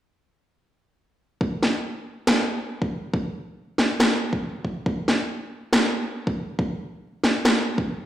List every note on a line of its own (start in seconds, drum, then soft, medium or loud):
1.41 kick loud
1.63 snare medium
2.27 snare loud
2.82 kick medium
3.14 kick loud
3.78 snare medium
4.00 snare loud
4.33 kick medium
4.65 kick medium
4.86 kick loud
5.08 snare medium
5.73 snare loud
6.27 kick loud
6.59 kick loud
7.24 snare medium
7.45 snare loud
7.78 kick loud